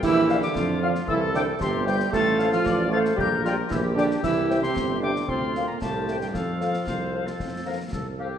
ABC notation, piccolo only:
X:1
M:2/4
L:1/16
Q:1/4=114
K:F
V:1 name="Piccolo"
e'3 d'3 f'2 | e'2 d'2 c'2 g'2 | a'3 f'3 a'2 | g'2 f'2 e'2 d'2 |
e'3 c'3 d'2 | c'3 b a3 g | f8- | f4 z4 |]